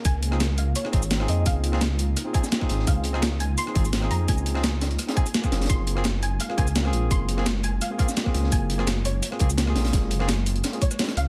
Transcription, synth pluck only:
\new Staff \with { instrumentName = "Synth pluck" } { \time 4/4 \key des \major \tempo 4 = 170 aes''4. f''8 des''4. ees''8 | f''4. r4 aes''4. | f''4. aes''8 c'''4. bes''8 | aes''4. r4 aes''4. |
c'''4. aes''8 f''8 aes''4. | c'''4. aes''8 f''8 f''4. | aes''4. des''2~ des''8~ | des''2~ des''8 des''4 f''8 | }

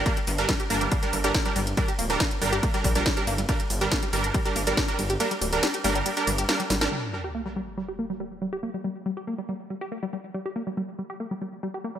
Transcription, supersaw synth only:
\new Staff \with { instrumentName = "Supersaw synth" } { \time 4/4 \key g \minor \tempo 4 = 140 <g d' bes'>16 r8 <g d' bes'>16 r8 <g d' bes'>8. <g d' bes'>16 r16 <g d' bes'>16 r16 <g d' bes'>16 r8 | <g d' bes'>16 r8 <g d' bes'>16 r8 <g d' bes'>8. <g d' bes'>16 r16 <g d' bes'>16 r16 <g d' bes'>16 r8 | <g d' bes'>16 r8 <g d' bes'>16 r8 <g d' bes'>8. <g d' bes'>16 r16 <g d' bes'>16 r16 <g d' bes'>16 r8 | <g d' bes'>16 r8 <g d' bes'>16 r8 <g d' bes'>8. <g d' bes'>16 r8 <g d' bes'>16 r8 <g d' bes'>16 |
r1 | r1 | r1 | }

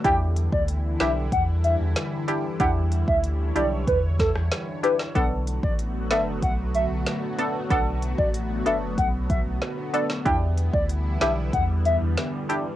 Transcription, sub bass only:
\new Staff \with { instrumentName = "Sub bass" } { \clef bass \time 4/4 \key e \dorian \tempo 4 = 94 e,8. d,8. b,,8 e,8. e,16 r4 | e,8. d,8. b,,8 e,8. e,16 r4 | b,,8. a,,8. fis,,8 b,,8. b,,16 r4 | b,,8. a,,8. fis,,8 b,,8. b,,16 r4 |
e,8. d,8. b,,8 e,8. e,16 r4 | }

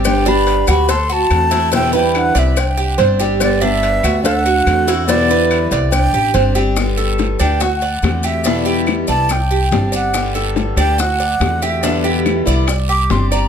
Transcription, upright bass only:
\new Staff \with { instrumentName = "Upright bass" } { \clef bass \time 4/4 \key g \major \tempo 4 = 142 g,,4. d,4. e,4~ | e,4. c,4. g,,4~ | g,,4. d,4. e,4~ | e,4. c,4 a,,8 g,,4~ |
g,,4. d,4. e,4~ | e,4. c,4. g,,4~ | g,,4. d,4. e,4~ | e,4. c,4. g,,4 | }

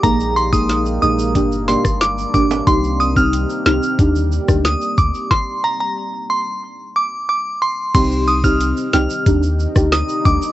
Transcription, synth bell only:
\new Staff \with { instrumentName = "Synth bell" } { \time 4/4 \key c \minor \tempo 4 = 91 bes''16 r16 c'''16 ees'''16 r8 ees'''16 r8. c'''16 r16 d'''16 r16 d'''16 r16 | c'''16 r16 ees'''16 f'''16 r8 f'''16 r4 r16 ees'''16 r16 d'''16 r16 | c'''16 r16 bes''16 bes''16 r8 c'''16 r8. d'''16 r16 d'''16 r16 c'''16 r16 | c'''16 r16 ees'''16 f'''16 r8 f'''16 r4 r16 ees'''16 r16 d'''16 r16 | }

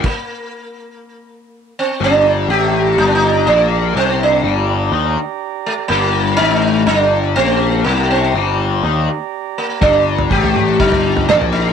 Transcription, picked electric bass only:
\new Staff \with { instrumentName = "Picked electric bass" } { \clef bass \time 4/4 \key g \minor \tempo 4 = 123 r1 | g,,4 a,,4 g,,4 bes,,4 | c,4 g,,4 ees,8 r4. | g,,4 a,,4 g,,4 bes,,4 |
c,4 g,,4 ees,8 r4. | g,,4 a,,4 g,,4 bes,,4 | }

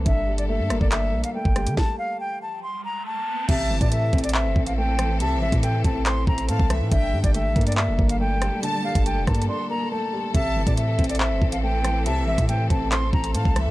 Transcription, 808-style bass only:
\new Staff \with { instrumentName = "808-style bass" } { \clef bass \time 4/4 \key a \phrygian \tempo 4 = 140 g,,4~ g,,16 g,16 g,,16 g,,8. bes,,16 r8 g,,8 d16 | r1 | a,,8 g,,16 a,8. a,,8. g,,16 a,,4. | c,16. a,,16. a,8. a,,4 a,,8 a,16 c,8 a,16 |
g,,8 g,16 g,,8 a,,16 g,8. f,,16 g,,4~ g,,16 r16 | r8. g,,8 f,,16 g,8 r2 | a,,8 g,,16 a,8. a,,8. g,,16 a,,4. | c,16. a,,16. a,8. a,,4 a,,8 a,16 c,8 a,16 | }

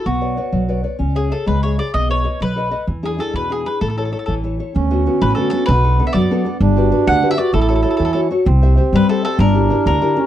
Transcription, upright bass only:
\new Staff \with { instrumentName = "Upright bass" } { \clef bass \time 6/8 \key a \major \tempo 4. = 129 b,,4. b,,4. | cis,4. cis,4. | b,,4. b,,4. | e,4. e,4. |
a,,4. a,,4. | \key d \major d,4. a,,8 r4 | b,,4. fis,8 r4 | g,,4. d,8 r4 |
a,,4. e,8 r4 | c,4. g,8 r4 | g,,4. d,8 r4 | }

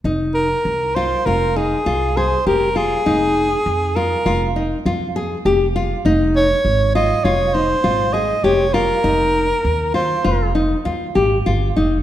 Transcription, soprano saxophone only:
\new Staff \with { instrumentName = "Soprano saxophone" } { \time 5/4 \key aes \major \tempo 4 = 100 r8 bes'4 c''8 bes'8 aes'4 c''8 bes'8 aes'8~ | aes'4. bes'4 r2 r8 | r8 des''4 ees''8 des''8 c''4 ees''8 des''8 bes'8~ | bes'4. c''4 r2 r8 | }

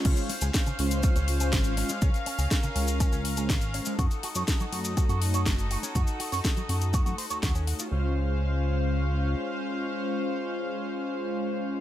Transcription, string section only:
\new Staff \with { instrumentName = "String section" } { \time 4/4 \key des \major \tempo 4 = 122 << { <des' f''>1~ | <des' f''>1 | <ees' a'>1~ | <ees' a'>1 |
<des' c'' f''>1~ | <des' c'' f''>1 | } \\ { c''1 | bes'1 | ges'1~ | ges'1 |
r1 | r1 | } >> }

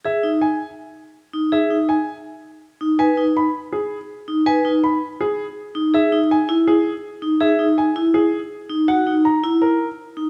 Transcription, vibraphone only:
\new Staff \with { instrumentName = "Vibraphone" } { \time 4/4 \key e \lydian \tempo 4 = 163 gis'8 dis'8 r2 r8 dis'8 | gis'8 dis'8 r2 r8 dis'8 | b'8 dis'8 r2 r8 dis'8 | b'8 dis'8 r2 r8 dis'8 |
gis'8 dis'8 r8 e'8 r4. dis'8 | gis'8 dis'8 r8 e'8 r4. dis'8 | fis'8 dis'8 r8 e'8 r4. dis'8 | }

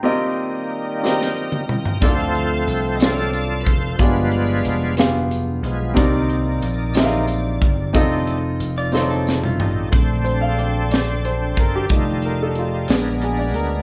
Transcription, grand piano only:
<<
  \new Staff \with { instrumentName = "Grand piano" } { \time 6/8 \key bes \major \tempo 4. = 61 << { g''16 r2 r8. | r2. | r2. | r2. |
r2. | r8 c''16 f''16 d''8 d''8 c''8 bes'16 g'16~ | g'8 bes'16 a'16 f'8 r8 aes'16 d''16 bes'8 | } \\ { <c' f' g' bes' ees''>4 r8 <c' f' g' bes' c''>4 r8 | <c' d' ees' f' a' d''>4 r8 <c' d' f' a' des'' d''>4 r8 | <b f' g' aes' d''>4 r8 <b f' g' aes' f''>4 r8 | <c' ees' g' bes' d''>4 r8 <c' ees' g' bes' e'' f''>4 r8 |
<c' ees' f' a' ees''>4 r8 <c' ees' f' a' des'' d''>4 r8 | r2. | r2. | } >> }
  \new Staff \with { instrumentName = "Grand piano" } { \time 6/8 \key bes \major r2. | d4. r4. | g,4. r4. | c4. r4. |
r2. | <a c' d'>2. | <g a ees'>4. <aes ces' d'>8 r4 | }
>>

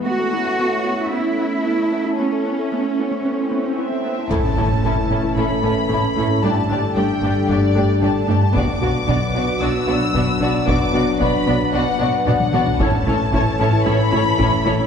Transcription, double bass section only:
\new Staff \with { instrumentName = "Double bass section" } { \clef bass \time 4/4 \key a \mixolydian \tempo 4 = 113 r1 | r1 | a,,8 a,,8 a,,8 a,,8 a,,8 a,,8 a,,8 a,,8 | g,,8 g,,8 g,,8 g,,8 g,,8 g,,8 g,,8 g,,8 |
b,,8 b,,8 b,,8 b,,8 b,,8 b,,8 b,,8 b,,8 | b,,8 b,,8 b,,8 b,,8 b,,8 b,,8 b,,8 b,,8 | a,,8 a,,8 a,,8 a,,8 a,,8 a,,8 a,,8 a,,8 | }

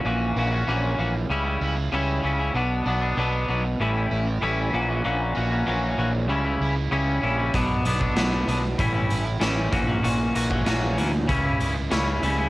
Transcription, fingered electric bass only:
\new Staff \with { instrumentName = "Fingered electric bass" } { \clef bass \time 4/4 \key fis \phrygian \tempo 4 = 96 ais,,8 ais,,8 ais,,8 ais,,8 cis,8 cis,8 cis,8 cis,8 | b,,8 b,,8 b,,8 b,,8 a,,8 a,,8 a,,8 ais,,8 | ais,,8 ais,,8 ais,,8 ais,,8 cis,8 cis,8 cis,8 ais,,8 | b,,8 b,,8 b,,8 b,,8 a,,8 a,,8 a,,8 ais,,8 |
ais,,8 ais,,8 ais,,8 d,8 cis,8 cis,8 cis,8 cis,8 | }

